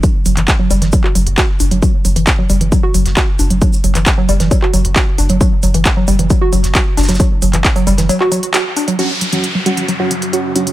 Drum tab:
HH |x---o-x-x---o-x-x---o-x-x---o-x-|x---o-x-x---o-x-x---o-x-x---o-x-|x---o-x-x---o-x-x---o-x-x---o-x-|x---o-x-x---o-x-x---o-x-x---o-x-|
SH |x---x---x---x---x---x---x---x---|x---x---x---x---x---x---x---x---|x-x---x-x---x---x---x---x---x---|x---x---x---x---x---x---x---xxxx|
CP |------x-x---------x-----x-------|--------x---------------x-------|------x-x---------x-----x-------|--------x---------------x-------|
SD |--------o-----o---------o-------|--------o-------------o-o-------|--------o-----o---------o-------|--------o-------------o-o---oooo|
BD |o-------o-------o-------o-------|o-------o-------o-------o-------|o-------o-------o-------o-------|o-------o-------o-------o-------|

HH |x---o-x-x-o-o-x-x---o-x-x---o-x-|x---x-x-x---x-x-x---x-x-x---x-x-|
SH |x---x---x---x---x---x---x---x---|--------------------------------|
CP |------x-x---------x-----x-------|--------------------------------|
SD |--------o-----o---------o-------|--------------------------------|
BD |o-------o-----------------------|--------------------------------|